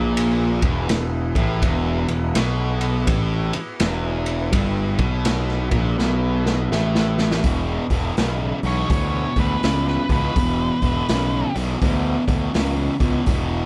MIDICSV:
0, 0, Header, 1, 8, 480
1, 0, Start_track
1, 0, Tempo, 727273
1, 1072, Time_signature, 4, 2, 24, 8
1, 9013, End_track
2, 0, Start_track
2, 0, Title_t, "Lead electric guitar"
2, 0, Program_c, 0, 29
2, 5721, Note_on_c, 0, 73, 83
2, 5873, Note_off_c, 0, 73, 0
2, 5882, Note_on_c, 0, 73, 75
2, 6189, Note_off_c, 0, 73, 0
2, 6204, Note_on_c, 0, 71, 79
2, 6510, Note_off_c, 0, 71, 0
2, 6524, Note_on_c, 0, 71, 71
2, 6672, Note_off_c, 0, 71, 0
2, 6680, Note_on_c, 0, 71, 90
2, 7612, Note_off_c, 0, 71, 0
2, 9013, End_track
3, 0, Start_track
3, 0, Title_t, "Tonewheel organ"
3, 0, Program_c, 1, 16
3, 0, Note_on_c, 1, 64, 64
3, 0, Note_on_c, 1, 68, 65
3, 0, Note_on_c, 1, 71, 66
3, 1049, Note_off_c, 1, 71, 0
3, 1051, Note_off_c, 1, 64, 0
3, 1052, Note_off_c, 1, 68, 0
3, 1063, Note_on_c, 1, 71, 74
3, 1064, Note_on_c, 1, 68, 63
3, 1066, Note_on_c, 1, 59, 68
3, 1066, Note_on_c, 1, 64, 72
3, 2969, Note_off_c, 1, 68, 0
3, 2969, Note_off_c, 1, 71, 0
3, 2970, Note_off_c, 1, 59, 0
3, 2970, Note_off_c, 1, 64, 0
3, 2991, Note_on_c, 1, 68, 72
3, 2992, Note_on_c, 1, 71, 65
3, 2996, Note_on_c, 1, 64, 63
3, 4894, Note_off_c, 1, 68, 0
3, 4896, Note_off_c, 1, 71, 0
3, 4897, Note_off_c, 1, 64, 0
3, 9013, End_track
4, 0, Start_track
4, 0, Title_t, "Distorted electric guitar"
4, 0, Program_c, 2, 30
4, 0, Note_on_c, 2, 46, 96
4, 406, Note_off_c, 2, 46, 0
4, 417, Note_on_c, 2, 40, 93
4, 587, Note_off_c, 2, 40, 0
4, 595, Note_on_c, 2, 40, 64
4, 836, Note_off_c, 2, 40, 0
4, 897, Note_on_c, 2, 45, 92
4, 1067, Note_off_c, 2, 45, 0
4, 1073, Note_on_c, 2, 40, 102
4, 1367, Note_off_c, 2, 40, 0
4, 1377, Note_on_c, 2, 40, 66
4, 1517, Note_off_c, 2, 40, 0
4, 1557, Note_on_c, 2, 47, 120
4, 2029, Note_off_c, 2, 47, 0
4, 2032, Note_on_c, 2, 45, 94
4, 2327, Note_off_c, 2, 45, 0
4, 2509, Note_on_c, 2, 40, 96
4, 2981, Note_off_c, 2, 40, 0
4, 2984, Note_on_c, 2, 43, 98
4, 3283, Note_off_c, 2, 43, 0
4, 3290, Note_on_c, 2, 47, 90
4, 3765, Note_off_c, 2, 47, 0
4, 3769, Note_on_c, 2, 46, 97
4, 3944, Note_off_c, 2, 46, 0
4, 3946, Note_on_c, 2, 47, 94
4, 4425, Note_off_c, 2, 47, 0
4, 4430, Note_on_c, 2, 45, 99
4, 4907, Note_off_c, 2, 45, 0
4, 4912, Note_on_c, 2, 40, 83
4, 4915, Note_on_c, 2, 47, 82
4, 5187, Note_off_c, 2, 40, 0
4, 5189, Note_off_c, 2, 47, 0
4, 5220, Note_on_c, 2, 40, 60
4, 5223, Note_on_c, 2, 47, 70
4, 5378, Note_off_c, 2, 40, 0
4, 5379, Note_off_c, 2, 47, 0
4, 5400, Note_on_c, 2, 40, 95
4, 5402, Note_on_c, 2, 49, 99
4, 5671, Note_off_c, 2, 40, 0
4, 5672, Note_off_c, 2, 49, 0
4, 5703, Note_on_c, 2, 40, 76
4, 5707, Note_on_c, 2, 47, 81
4, 5859, Note_off_c, 2, 40, 0
4, 5862, Note_off_c, 2, 47, 0
4, 5879, Note_on_c, 2, 40, 82
4, 5883, Note_on_c, 2, 47, 93
4, 6151, Note_off_c, 2, 40, 0
4, 6153, Note_off_c, 2, 47, 0
4, 6185, Note_on_c, 2, 40, 71
4, 6187, Note_on_c, 2, 47, 78
4, 6341, Note_off_c, 2, 40, 0
4, 6342, Note_off_c, 2, 47, 0
4, 6359, Note_on_c, 2, 40, 82
4, 6365, Note_on_c, 2, 49, 90
4, 6631, Note_off_c, 2, 40, 0
4, 6634, Note_off_c, 2, 49, 0
4, 6668, Note_on_c, 2, 40, 68
4, 6672, Note_on_c, 2, 47, 83
4, 6823, Note_off_c, 2, 40, 0
4, 6825, Note_off_c, 2, 47, 0
4, 6845, Note_on_c, 2, 40, 88
4, 6848, Note_on_c, 2, 47, 85
4, 7115, Note_off_c, 2, 40, 0
4, 7116, Note_off_c, 2, 47, 0
4, 7147, Note_on_c, 2, 40, 64
4, 7150, Note_on_c, 2, 47, 78
4, 7302, Note_off_c, 2, 40, 0
4, 7304, Note_off_c, 2, 47, 0
4, 7320, Note_on_c, 2, 40, 75
4, 7324, Note_on_c, 2, 49, 98
4, 7592, Note_off_c, 2, 40, 0
4, 7594, Note_off_c, 2, 49, 0
4, 7622, Note_on_c, 2, 40, 70
4, 7626, Note_on_c, 2, 47, 76
4, 7780, Note_off_c, 2, 40, 0
4, 7782, Note_off_c, 2, 47, 0
4, 7799, Note_on_c, 2, 40, 80
4, 7804, Note_on_c, 2, 47, 80
4, 8072, Note_off_c, 2, 40, 0
4, 8074, Note_off_c, 2, 47, 0
4, 8100, Note_on_c, 2, 40, 67
4, 8105, Note_on_c, 2, 47, 82
4, 8259, Note_off_c, 2, 40, 0
4, 8261, Note_off_c, 2, 47, 0
4, 8277, Note_on_c, 2, 40, 76
4, 8281, Note_on_c, 2, 49, 94
4, 8551, Note_off_c, 2, 40, 0
4, 8552, Note_off_c, 2, 49, 0
4, 8581, Note_on_c, 2, 40, 72
4, 8587, Note_on_c, 2, 47, 75
4, 8740, Note_off_c, 2, 40, 0
4, 8742, Note_off_c, 2, 47, 0
4, 8759, Note_on_c, 2, 40, 81
4, 8766, Note_on_c, 2, 47, 102
4, 9013, Note_off_c, 2, 40, 0
4, 9013, Note_off_c, 2, 47, 0
4, 9013, End_track
5, 0, Start_track
5, 0, Title_t, "Picked electric bass"
5, 0, Program_c, 3, 34
5, 0, Note_on_c, 3, 34, 94
5, 389, Note_off_c, 3, 34, 0
5, 413, Note_on_c, 3, 28, 93
5, 578, Note_off_c, 3, 28, 0
5, 590, Note_on_c, 3, 28, 76
5, 874, Note_off_c, 3, 28, 0
5, 893, Note_on_c, 3, 33, 100
5, 1058, Note_off_c, 3, 33, 0
5, 1069, Note_on_c, 3, 28, 90
5, 1353, Note_off_c, 3, 28, 0
5, 1376, Note_on_c, 3, 28, 78
5, 1540, Note_off_c, 3, 28, 0
5, 1551, Note_on_c, 3, 35, 83
5, 2005, Note_off_c, 3, 35, 0
5, 2029, Note_on_c, 3, 33, 86
5, 2313, Note_off_c, 3, 33, 0
5, 2512, Note_on_c, 3, 28, 92
5, 2966, Note_off_c, 3, 28, 0
5, 2989, Note_on_c, 3, 31, 83
5, 3273, Note_off_c, 3, 31, 0
5, 3292, Note_on_c, 3, 35, 93
5, 3748, Note_off_c, 3, 35, 0
5, 3773, Note_on_c, 3, 34, 94
5, 3938, Note_off_c, 3, 34, 0
5, 3954, Note_on_c, 3, 35, 92
5, 4407, Note_off_c, 3, 35, 0
5, 4428, Note_on_c, 3, 33, 83
5, 4885, Note_off_c, 3, 33, 0
5, 4913, Note_on_c, 3, 28, 92
5, 5134, Note_off_c, 3, 28, 0
5, 5218, Note_on_c, 3, 28, 88
5, 5346, Note_off_c, 3, 28, 0
5, 5396, Note_on_c, 3, 35, 75
5, 5616, Note_off_c, 3, 35, 0
5, 5697, Note_on_c, 3, 35, 89
5, 5825, Note_off_c, 3, 35, 0
5, 5874, Note_on_c, 3, 38, 83
5, 6095, Note_off_c, 3, 38, 0
5, 6180, Note_on_c, 3, 38, 85
5, 6307, Note_off_c, 3, 38, 0
5, 6361, Note_on_c, 3, 37, 78
5, 6580, Note_off_c, 3, 37, 0
5, 6663, Note_on_c, 3, 37, 88
5, 6790, Note_off_c, 3, 37, 0
5, 6839, Note_on_c, 3, 28, 95
5, 7058, Note_off_c, 3, 28, 0
5, 7144, Note_on_c, 3, 28, 80
5, 7270, Note_off_c, 3, 28, 0
5, 7323, Note_on_c, 3, 35, 76
5, 7541, Note_off_c, 3, 35, 0
5, 7628, Note_on_c, 3, 35, 81
5, 7753, Note_off_c, 3, 35, 0
5, 7802, Note_on_c, 3, 38, 90
5, 8020, Note_off_c, 3, 38, 0
5, 8105, Note_on_c, 3, 38, 87
5, 8231, Note_off_c, 3, 38, 0
5, 8281, Note_on_c, 3, 37, 77
5, 8500, Note_off_c, 3, 37, 0
5, 8581, Note_on_c, 3, 37, 93
5, 8709, Note_off_c, 3, 37, 0
5, 8758, Note_on_c, 3, 28, 88
5, 8978, Note_off_c, 3, 28, 0
5, 9013, End_track
6, 0, Start_track
6, 0, Title_t, "Muted distorted electric guitar strokes"
6, 2334, Note_on_c, 9, 29, 51
6, 2400, Note_off_c, 9, 29, 0
6, 9013, End_track
7, 0, Start_track
7, 0, Title_t, "Muted picked electric bass strokes"
7, 2337, Note_on_c, 9, 29, 39
7, 2403, Note_off_c, 9, 29, 0
7, 9013, End_track
8, 0, Start_track
8, 0, Title_t, "Drums"
8, 112, Note_on_c, 9, 51, 93
8, 178, Note_off_c, 9, 51, 0
8, 410, Note_on_c, 9, 51, 66
8, 411, Note_on_c, 9, 36, 100
8, 476, Note_off_c, 9, 51, 0
8, 477, Note_off_c, 9, 36, 0
8, 588, Note_on_c, 9, 51, 79
8, 594, Note_on_c, 9, 38, 98
8, 654, Note_off_c, 9, 51, 0
8, 660, Note_off_c, 9, 38, 0
8, 893, Note_on_c, 9, 36, 92
8, 897, Note_on_c, 9, 51, 55
8, 959, Note_off_c, 9, 36, 0
8, 963, Note_off_c, 9, 51, 0
8, 1069, Note_on_c, 9, 36, 90
8, 1072, Note_on_c, 9, 51, 74
8, 1135, Note_off_c, 9, 36, 0
8, 1138, Note_off_c, 9, 51, 0
8, 1375, Note_on_c, 9, 51, 55
8, 1441, Note_off_c, 9, 51, 0
8, 1551, Note_on_c, 9, 51, 90
8, 1557, Note_on_c, 9, 38, 100
8, 1617, Note_off_c, 9, 51, 0
8, 1623, Note_off_c, 9, 38, 0
8, 1853, Note_on_c, 9, 51, 64
8, 1919, Note_off_c, 9, 51, 0
8, 2027, Note_on_c, 9, 36, 98
8, 2027, Note_on_c, 9, 51, 90
8, 2093, Note_off_c, 9, 36, 0
8, 2093, Note_off_c, 9, 51, 0
8, 2331, Note_on_c, 9, 51, 64
8, 2397, Note_off_c, 9, 51, 0
8, 2505, Note_on_c, 9, 51, 81
8, 2511, Note_on_c, 9, 38, 93
8, 2571, Note_off_c, 9, 51, 0
8, 2577, Note_off_c, 9, 38, 0
8, 2812, Note_on_c, 9, 51, 61
8, 2878, Note_off_c, 9, 51, 0
8, 2987, Note_on_c, 9, 36, 91
8, 2987, Note_on_c, 9, 51, 86
8, 3053, Note_off_c, 9, 36, 0
8, 3053, Note_off_c, 9, 51, 0
8, 3290, Note_on_c, 9, 51, 57
8, 3292, Note_on_c, 9, 36, 102
8, 3356, Note_off_c, 9, 51, 0
8, 3358, Note_off_c, 9, 36, 0
8, 3464, Note_on_c, 9, 51, 94
8, 3470, Note_on_c, 9, 38, 97
8, 3530, Note_off_c, 9, 51, 0
8, 3536, Note_off_c, 9, 38, 0
8, 3620, Note_on_c, 9, 38, 31
8, 3686, Note_off_c, 9, 38, 0
8, 3770, Note_on_c, 9, 51, 64
8, 3772, Note_on_c, 9, 36, 96
8, 3836, Note_off_c, 9, 51, 0
8, 3838, Note_off_c, 9, 36, 0
8, 3953, Note_on_c, 9, 38, 61
8, 4019, Note_off_c, 9, 38, 0
8, 4266, Note_on_c, 9, 38, 66
8, 4332, Note_off_c, 9, 38, 0
8, 4436, Note_on_c, 9, 38, 73
8, 4502, Note_off_c, 9, 38, 0
8, 4590, Note_on_c, 9, 38, 72
8, 4656, Note_off_c, 9, 38, 0
8, 4742, Note_on_c, 9, 38, 76
8, 4808, Note_off_c, 9, 38, 0
8, 4828, Note_on_c, 9, 38, 90
8, 4894, Note_off_c, 9, 38, 0
8, 4908, Note_on_c, 9, 46, 66
8, 4911, Note_on_c, 9, 36, 110
8, 4974, Note_off_c, 9, 46, 0
8, 4977, Note_off_c, 9, 36, 0
8, 5215, Note_on_c, 9, 36, 71
8, 5216, Note_on_c, 9, 46, 47
8, 5281, Note_off_c, 9, 36, 0
8, 5282, Note_off_c, 9, 46, 0
8, 5393, Note_on_c, 9, 46, 61
8, 5398, Note_on_c, 9, 38, 96
8, 5459, Note_off_c, 9, 46, 0
8, 5464, Note_off_c, 9, 38, 0
8, 5696, Note_on_c, 9, 46, 46
8, 5762, Note_off_c, 9, 46, 0
8, 5874, Note_on_c, 9, 36, 114
8, 5875, Note_on_c, 9, 46, 74
8, 5940, Note_off_c, 9, 36, 0
8, 5941, Note_off_c, 9, 46, 0
8, 6179, Note_on_c, 9, 36, 76
8, 6180, Note_on_c, 9, 46, 54
8, 6245, Note_off_c, 9, 36, 0
8, 6246, Note_off_c, 9, 46, 0
8, 6356, Note_on_c, 9, 46, 73
8, 6362, Note_on_c, 9, 38, 105
8, 6422, Note_off_c, 9, 46, 0
8, 6428, Note_off_c, 9, 38, 0
8, 6520, Note_on_c, 9, 38, 29
8, 6586, Note_off_c, 9, 38, 0
8, 6661, Note_on_c, 9, 36, 76
8, 6664, Note_on_c, 9, 46, 50
8, 6727, Note_off_c, 9, 36, 0
8, 6730, Note_off_c, 9, 46, 0
8, 6837, Note_on_c, 9, 36, 112
8, 6837, Note_on_c, 9, 46, 78
8, 6903, Note_off_c, 9, 36, 0
8, 6903, Note_off_c, 9, 46, 0
8, 7141, Note_on_c, 9, 36, 69
8, 7141, Note_on_c, 9, 46, 45
8, 7207, Note_off_c, 9, 36, 0
8, 7207, Note_off_c, 9, 46, 0
8, 7317, Note_on_c, 9, 46, 73
8, 7323, Note_on_c, 9, 38, 105
8, 7383, Note_off_c, 9, 46, 0
8, 7389, Note_off_c, 9, 38, 0
8, 7626, Note_on_c, 9, 46, 51
8, 7692, Note_off_c, 9, 46, 0
8, 7799, Note_on_c, 9, 36, 106
8, 7801, Note_on_c, 9, 46, 76
8, 7865, Note_off_c, 9, 36, 0
8, 7867, Note_off_c, 9, 46, 0
8, 8103, Note_on_c, 9, 36, 86
8, 8105, Note_on_c, 9, 46, 58
8, 8169, Note_off_c, 9, 36, 0
8, 8171, Note_off_c, 9, 46, 0
8, 8278, Note_on_c, 9, 46, 77
8, 8284, Note_on_c, 9, 38, 103
8, 8344, Note_off_c, 9, 46, 0
8, 8350, Note_off_c, 9, 38, 0
8, 8580, Note_on_c, 9, 46, 50
8, 8582, Note_on_c, 9, 36, 78
8, 8646, Note_off_c, 9, 46, 0
8, 8648, Note_off_c, 9, 36, 0
8, 8753, Note_on_c, 9, 46, 67
8, 8758, Note_on_c, 9, 36, 100
8, 8819, Note_off_c, 9, 46, 0
8, 8824, Note_off_c, 9, 36, 0
8, 9013, End_track
0, 0, End_of_file